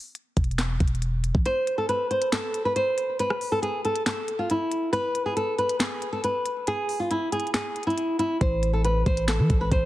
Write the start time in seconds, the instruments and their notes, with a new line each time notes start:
0.15 closed hi-hat
0.37 808-style bass E1, kick, closed hi-hat
0.44 closed hi-hat
0.51 closed hi-hat
0.59 snare, clap, closed hi-hat
0.80 808-style bass E1, kick, closed hi-hat
0.88 closed hi-hat
0.95 closed hi-hat
1.02 closed hi-hat
1.24 closed hi-hat
1.35 808-style bass A1, kick
1.46 nylon-string guitar C5, closed hi-hat
1.67 closed hi-hat
1.78 nylon-string guitar A4
1.89 nylon-string guitar B4, closed hi-hat
2.11 nylon-string guitar C5, closed hi-hat
2.22 closed hi-hat
2.32 nylon-string guitar A4, snare, clap, closed hi-hat
2.54 closed hi-hat
2.65 nylon-string guitar B4
2.76 nylon-string guitar C5, closed hi-hat
2.98 closed hi-hat
3.19 nylon-string guitar B4, closed hi-hat
3.30 cross-stick
3.41 open hi-hat
3.52 nylon-string guitar A4
3.62 nylon-string guitar G#4, closed hi-hat
3.85 nylon-string guitar A4, closed hi-hat
3.96 closed hi-hat
4.06 nylon-string guitar A4, snare, clap, closed hi-hat
4.28 closed hi-hat
4.39 nylon-string guitar F4
4.50 nylon-string guitar E4, closed hi-hat
4.71 closed hi-hat
4.93 nylon-string guitar B4, closed hi-hat
5.15 closed hi-hat
5.26 nylon-string guitar G#4
5.37 nylon-string guitar A4, closed hi-hat
5.58 nylon-string guitar B4, closed hi-hat
5.69 closed hi-hat
5.79 nylon-string guitar G#4, snare, clap, closed hi-hat
6.02 closed hi-hat
6.13 nylon-string guitar A4
6.24 nylon-string guitar B4, closed hi-hat
6.46 closed hi-hat
6.67 nylon-string guitar G#4, closed hi-hat
6.89 open hi-hat
7.00 nylon-string guitar F4
7.11 nylon-string guitar E4, closed hi-hat
7.32 nylon-string guitar G#4, closed hi-hat
7.40 closed hi-hat
7.47 closed hi-hat
7.54 nylon-string guitar G#4, snare, clap, closed hi-hat
7.76 closed hi-hat
7.83 nylon-string guitar E4, closed hi-hat
7.90 closed hi-hat
7.98 closed hi-hat
8.19 nylon-string guitar E4, closed hi-hat
8.41 808-style bass A1, nylon-string guitar C5, kick, closed hi-hat
8.63 closed hi-hat
8.73 nylon-string guitar A4
8.85 nylon-string guitar B4, closed hi-hat
9.06 808-style bass A1, nylon-string guitar C5, kick, closed hi-hat
9.17 closed hi-hat
9.28 nylon-string guitar A4, snare, clap, closed hi-hat
9.39 808-style bass E3
9.50 808-style bass A1, kick, closed hi-hat
9.61 nylon-string guitar B4
9.72 808-style bass A1, nylon-string guitar C5, kick, closed hi-hat